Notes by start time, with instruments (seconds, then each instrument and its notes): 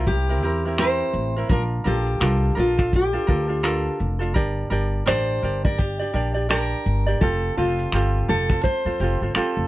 Already playing: upright bass C2, ukulele C4 E4 A#4
0.07 steel-string acoustic guitar G4, kick, shaker
0.29 ukulele C4 E4 A#4
0.42 upright bass E2, ukulele C4 E4 G4 A#4, shaker
0.65 ukulele C4 E4 A#4
0.78 ukulele C4 E4 G4 A#4, steel-string acoustic guitar C5, finger snap, shaker
1.13 upright bass A1, shaker
1.36 ukulele C4 E4 A#4
1.49 upright bass A#1, ukulele D4 F4 A#4, steel-string acoustic guitar A#4, kick, shaker
1.84 upright bass A#1, ukulele D4 F4 A4 A#4, steel-string acoustic guitar G4, shaker
2.06 shaker
2.20 upright bass C2, ukulele D4 F4 A4 A#4, finger snap, shaker
2.55 upright bass A#1, ukulele D4 F4 A4 A#4, shaker
2.59 steel-string acoustic guitar F4
2.77 ukulele D4 F4 A4, finger snap, kick, shaker
2.93 steel-string acoustic guitar G4, kick, shaker
3.13 ukulele D4 F4 A4
3.27 upright bass D2, ukulele D4 F4 A4 A#4, kick, shaker
3.48 ukulele D4 F4 A4
3.63 ukulele D4 F4 A4 A#4, finger snap, shaker
4.00 upright bass F1, shaker
4.19 ukulele D4 F4 A4, shaker
4.34 upright bass G1, ukulele D4 G4 A#4 D5, kick, shaker
4.70 upright bass G1, ukulele D4 G4 A#4 D5, shaker
5.06 upright bass A1, ukulele D4 G4 A#4 D5, steel-string acoustic guitar C5, finger snap, shaker
5.42 upright bass G1, ukulele D4 G4 A#4 D5, shaker
5.65 ukulele D4 G4 D5, steel-string acoustic guitar A#4, kick, shaker
5.78 steel-string acoustic guitar G4, kick, shaker
5.99 ukulele D4 G4 D5
6.13 upright bass A#1, ukulele D4 G4 A#4 D5, shaker
6.34 ukulele D4 G4 D5
6.49 ukulele D4 G4 A#4 D5, steel-string acoustic guitar A#4, finger snap, shaker
6.86 upright bass G1, shaker
7.06 ukulele D4 G4 D5
7.21 upright bass F1, ukulele C4 F4 G4 A4, steel-string acoustic guitar A4, kick, shaker
7.57 upright bass F1, ukulele C4 F4 G4 A4, steel-string acoustic guitar F4, shaker
7.79 shaker
7.92 upright bass G1, ukulele C4 F4 G4 A4, finger snap, shaker
8.28 upright bass F1, ukulele C4 F4 G4 A4, steel-string acoustic guitar A4, shaker
8.50 ukulele C4 F4 A4, finger snap, kick
8.64 steel-string acoustic guitar C5, kick, shaker
8.85 upright bass F2, ukulele C4 F4 A4
9.00 upright bass F1, ukulele C4 F4 G4 A4, shaker
9.21 upright bass G1, ukulele C4 F4 A4
9.34 ukulele C4 F4 G4 A4, steel-string acoustic guitar A4, finger snap, muted upright bass stroke, shaker
9.57 upright bass F1